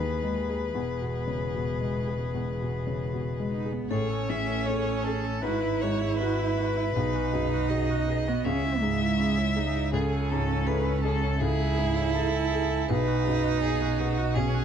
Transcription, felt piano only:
Already playing: D#2 D#3 E3 G#3 G#4
0.23 G#3
0.49 G#4
0.75 E2
1.01 B2
1.27 C#3
1.54 B2
1.80 G#3
2.07 G#4
2.34 E2
2.61 B2
2.87 C#3
3.13 B2
3.39 G#3
3.66 G#4
3.91 A2
4.30 E3
4.68 C#4
5.06 A4
5.43 G#2
5.83 G#3
6.21 F#4
6.58 B4
6.96 B1
7.34 F#2
7.70 F#4
8.07 B4
8.46 C#2
8.82 G#2
9.19 E4
9.56 G#4
9.93 C#2
10.32 G#2
10.68 E4
11.05 A4
11.42 C#2
11.79 G#2
12.16 E4
12.53 A4
12.90 B1
13.27 F#2
13.64 D#4
14.00 B4
14.36 B1

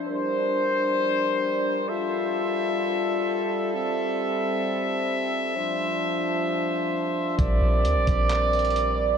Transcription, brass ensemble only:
0.06 G3 D4 A#4 C5
1.89 F4 A4 E5
3.72 C4 E5
5.55 F3 D4 C5
7.39 G3 C4 A#4 D5

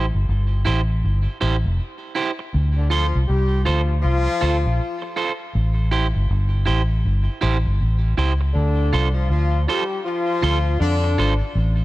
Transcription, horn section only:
2.77 D3 D4
2.89 F3 F4
3.28 G3 G4
3.65 F3 F4
4.02 F3 F4
8.54 D3 D4
9.14 F3 F4
9.29 F3 F4
9.67 G3 G4
10.05 F3 F4
10.79 D3 D4

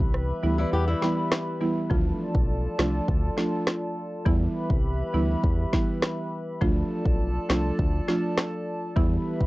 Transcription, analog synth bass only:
0.00 C2
0.44 D2
0.73 E2
1.91 D2
2.35 B1
2.79 C2
3.08 D2
4.26 E2
4.70 C2
5.14 D2
5.44 E2
6.61 D2
7.05 B1
7.50 C2
7.79 D2
8.97 E2
9.41 C2

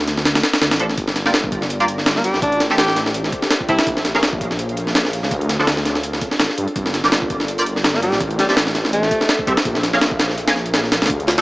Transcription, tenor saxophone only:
2.16 A#3
2.24 G3
2.42 D4
2.79 G4
3.69 E4
7.95 A#3
8.03 G3
8.39 G3
8.49 G3
8.93 A3

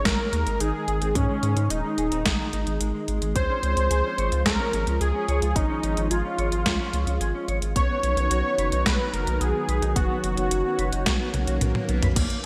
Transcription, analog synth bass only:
0.05 G#1
0.33 D#2
0.47 G#1
0.60 G#1
0.88 G#1
1.01 G#1
1.15 G#2
1.43 G#2
1.56 G#2
1.70 D#1
1.98 D#1
2.12 D#1
2.25 G#1
2.53 G#1
2.67 G#1
2.81 G#1
3.08 G#1
3.22 G#1
3.36 C#2
3.63 C#2
3.77 C#2
3.91 C#2
4.18 G#1
4.32 C#2
4.46 C#2
4.73 G#1
4.87 C#2
5.01 C#2
5.28 C#2
5.42 C#2
5.56 G#1
5.83 G#1
5.97 G#1
6.11 G#1
6.38 G#1
6.52 G#1
6.66 C#2
6.93 C#2
7.07 C#2
7.21 G#1
7.48 G#1
7.62 G#1
7.76 B1
8.03 B1
8.17 B1
8.31 B1
8.58 F#1
8.72 B1
8.86 B1
9.13 F#1
9.27 B1
9.41 B1
9.68 B1
9.82 B1
9.96 F#1
10.24 F#1
10.37 F#1
10.51 F#1
10.79 F#1
10.92 F#1
11.06 B1
11.34 B1
11.48 B1
11.61 B1
11.89 B1
12.03 B1
12.16 A#1

